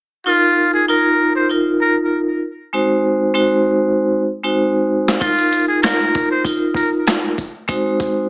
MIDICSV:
0, 0, Header, 1, 4, 480
1, 0, Start_track
1, 0, Tempo, 618557
1, 205, Time_signature, 4, 2, 24, 8
1, 6435, End_track
2, 0, Start_track
2, 0, Title_t, "Muted trumpet"
2, 0, Program_c, 0, 59
2, 207, Note_on_c, 0, 65, 99
2, 554, Note_off_c, 0, 65, 0
2, 572, Note_on_c, 0, 68, 73
2, 672, Note_off_c, 0, 68, 0
2, 686, Note_on_c, 0, 70, 78
2, 1034, Note_off_c, 0, 70, 0
2, 1053, Note_on_c, 0, 72, 68
2, 1152, Note_off_c, 0, 72, 0
2, 1405, Note_on_c, 0, 70, 73
2, 1523, Note_off_c, 0, 70, 0
2, 4043, Note_on_c, 0, 65, 104
2, 4393, Note_off_c, 0, 65, 0
2, 4408, Note_on_c, 0, 68, 75
2, 4510, Note_off_c, 0, 68, 0
2, 4521, Note_on_c, 0, 70, 79
2, 4871, Note_off_c, 0, 70, 0
2, 4896, Note_on_c, 0, 72, 76
2, 4994, Note_off_c, 0, 72, 0
2, 5237, Note_on_c, 0, 70, 77
2, 5359, Note_off_c, 0, 70, 0
2, 6435, End_track
3, 0, Start_track
3, 0, Title_t, "Vibraphone"
3, 0, Program_c, 1, 11
3, 201, Note_on_c, 1, 63, 87
3, 206, Note_on_c, 1, 65, 77
3, 212, Note_on_c, 1, 70, 95
3, 648, Note_off_c, 1, 63, 0
3, 651, Note_off_c, 1, 65, 0
3, 654, Note_off_c, 1, 70, 0
3, 686, Note_on_c, 1, 63, 98
3, 691, Note_on_c, 1, 65, 81
3, 698, Note_on_c, 1, 70, 103
3, 1130, Note_off_c, 1, 63, 0
3, 1133, Note_off_c, 1, 65, 0
3, 1136, Note_off_c, 1, 70, 0
3, 1161, Note_on_c, 1, 63, 86
3, 1167, Note_on_c, 1, 65, 83
3, 1173, Note_on_c, 1, 70, 99
3, 1831, Note_off_c, 1, 63, 0
3, 1834, Note_off_c, 1, 65, 0
3, 1836, Note_off_c, 1, 70, 0
3, 2117, Note_on_c, 1, 56, 89
3, 2120, Note_on_c, 1, 60, 82
3, 2123, Note_on_c, 1, 63, 78
3, 2125, Note_on_c, 1, 66, 75
3, 2129, Note_on_c, 1, 72, 94
3, 2566, Note_off_c, 1, 56, 0
3, 2568, Note_off_c, 1, 60, 0
3, 2569, Note_off_c, 1, 63, 0
3, 2570, Note_off_c, 1, 66, 0
3, 2572, Note_off_c, 1, 72, 0
3, 2592, Note_on_c, 1, 56, 94
3, 2594, Note_on_c, 1, 60, 84
3, 2597, Note_on_c, 1, 63, 85
3, 2600, Note_on_c, 1, 66, 88
3, 2602, Note_on_c, 1, 72, 106
3, 3266, Note_off_c, 1, 56, 0
3, 3267, Note_off_c, 1, 60, 0
3, 3269, Note_off_c, 1, 63, 0
3, 3270, Note_off_c, 1, 66, 0
3, 3271, Note_off_c, 1, 72, 0
3, 3440, Note_on_c, 1, 56, 83
3, 3443, Note_on_c, 1, 60, 81
3, 3446, Note_on_c, 1, 63, 82
3, 3448, Note_on_c, 1, 66, 76
3, 3451, Note_on_c, 1, 72, 87
3, 3993, Note_off_c, 1, 56, 0
3, 3995, Note_off_c, 1, 60, 0
3, 3996, Note_off_c, 1, 63, 0
3, 3997, Note_off_c, 1, 66, 0
3, 3999, Note_off_c, 1, 72, 0
3, 4041, Note_on_c, 1, 63, 90
3, 4046, Note_on_c, 1, 65, 83
3, 4052, Note_on_c, 1, 70, 97
3, 4488, Note_off_c, 1, 63, 0
3, 4490, Note_off_c, 1, 65, 0
3, 4493, Note_off_c, 1, 70, 0
3, 4524, Note_on_c, 1, 63, 97
3, 4531, Note_on_c, 1, 65, 84
3, 4536, Note_on_c, 1, 70, 108
3, 4970, Note_off_c, 1, 63, 0
3, 4973, Note_off_c, 1, 65, 0
3, 4976, Note_off_c, 1, 70, 0
3, 5002, Note_on_c, 1, 63, 90
3, 5008, Note_on_c, 1, 65, 83
3, 5014, Note_on_c, 1, 70, 98
3, 5671, Note_off_c, 1, 63, 0
3, 5674, Note_off_c, 1, 65, 0
3, 5677, Note_off_c, 1, 70, 0
3, 5957, Note_on_c, 1, 56, 88
3, 5960, Note_on_c, 1, 60, 83
3, 5963, Note_on_c, 1, 63, 74
3, 5966, Note_on_c, 1, 66, 76
3, 5969, Note_on_c, 1, 72, 95
3, 6406, Note_off_c, 1, 56, 0
3, 6407, Note_off_c, 1, 60, 0
3, 6409, Note_off_c, 1, 63, 0
3, 6410, Note_off_c, 1, 66, 0
3, 6412, Note_off_c, 1, 72, 0
3, 6435, End_track
4, 0, Start_track
4, 0, Title_t, "Drums"
4, 3944, Note_on_c, 9, 38, 93
4, 4022, Note_off_c, 9, 38, 0
4, 4044, Note_on_c, 9, 36, 102
4, 4048, Note_on_c, 9, 42, 82
4, 4122, Note_off_c, 9, 36, 0
4, 4125, Note_off_c, 9, 42, 0
4, 4179, Note_on_c, 9, 42, 59
4, 4257, Note_off_c, 9, 42, 0
4, 4288, Note_on_c, 9, 42, 72
4, 4365, Note_off_c, 9, 42, 0
4, 4527, Note_on_c, 9, 42, 87
4, 4530, Note_on_c, 9, 37, 84
4, 4534, Note_on_c, 9, 38, 113
4, 4605, Note_off_c, 9, 42, 0
4, 4608, Note_off_c, 9, 37, 0
4, 4611, Note_off_c, 9, 38, 0
4, 4770, Note_on_c, 9, 42, 73
4, 4773, Note_on_c, 9, 36, 89
4, 4847, Note_off_c, 9, 42, 0
4, 4851, Note_off_c, 9, 36, 0
4, 5001, Note_on_c, 9, 36, 84
4, 5012, Note_on_c, 9, 42, 82
4, 5079, Note_off_c, 9, 36, 0
4, 5090, Note_off_c, 9, 42, 0
4, 5234, Note_on_c, 9, 36, 87
4, 5251, Note_on_c, 9, 42, 74
4, 5311, Note_off_c, 9, 36, 0
4, 5328, Note_off_c, 9, 42, 0
4, 5484, Note_on_c, 9, 42, 87
4, 5490, Note_on_c, 9, 37, 91
4, 5494, Note_on_c, 9, 38, 118
4, 5562, Note_off_c, 9, 42, 0
4, 5568, Note_off_c, 9, 37, 0
4, 5571, Note_off_c, 9, 38, 0
4, 5728, Note_on_c, 9, 36, 83
4, 5730, Note_on_c, 9, 42, 71
4, 5805, Note_off_c, 9, 36, 0
4, 5807, Note_off_c, 9, 42, 0
4, 5964, Note_on_c, 9, 36, 104
4, 5968, Note_on_c, 9, 42, 80
4, 6042, Note_off_c, 9, 36, 0
4, 6046, Note_off_c, 9, 42, 0
4, 6207, Note_on_c, 9, 42, 73
4, 6208, Note_on_c, 9, 36, 89
4, 6285, Note_off_c, 9, 36, 0
4, 6285, Note_off_c, 9, 42, 0
4, 6435, End_track
0, 0, End_of_file